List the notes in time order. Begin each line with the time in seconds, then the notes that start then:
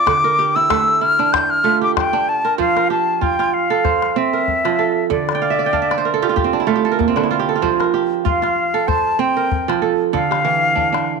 Already playing: C4 F4 A4 A#4 D5 D6
0.07 D3, calabash thump, calabash click
0.24 A#4
0.39 G4
0.56 E4 E6
0.70 A3, calabash thump, calabash click
0.88 calabash click
1.01 E4 F6
1.19 D4, calabash click
1.33 G6, calabash thump, calabash click
1.50 F6
1.64 A3 F4
1.81 G4 D6
1.97 G5, calabash thump, calabash click
2.13 D4, calabash click
2.29 A5
2.45 A#4, calabash click
2.58 F3 C5 F5, calabash thump
2.76 A#4, calabash click
2.90 G4 A5
3.21 F4 G5, calabash thump
3.39 F4, calabash click
3.54 F5
3.70 A4, calabash click
3.84 C5, calabash thump, calabash click
4.02 calabash click
4.16 C4 E5
4.33 A#4
4.48 calabash thump
4.65 F3, calabash click
4.79 A4
5.10 D3 D5, calabash thump
5.29 calabash click
5.35 G5
5.42 F5
5.50 E5
5.59 D5
5.66 G5
5.73 D4 F5, calabash thump
5.82 E5
5.91 D5, calabash click
5.98 C5
6.05 A#4
6.14 A4
6.22 F4 G4, calabash click
6.29 F4
6.36 G4, calabash thump, calabash click
6.44 C4
6.53 D4
6.60 E4
6.67 A3 F4
6.76 G4
6.85 A4
6.92 A#4
6.99 A#3, calabash thump
7.08 C4
7.16 D3 D4, calabash click
7.23 E4
7.31 F4
7.39 G4
7.49 A4
7.56 F4
7.62 F3 C5, calabash thump
7.80 A#4, calabash click
7.94 G4
8.25 F4 F5, calabash thump
8.42 F4, calabash click
8.74 A4, calabash click
8.88 C5 A5, calabash thump, calabash click
9.19 C4 G5
9.37 A#4
9.52 calabash thump
9.68 F3, calabash click
9.82 A4
10.13 D3 A4 F5, calabash thump, calabash click
10.31 G4, calabash click
10.45 E3
10.75 D4, calabash thump
10.92 D4, calabash click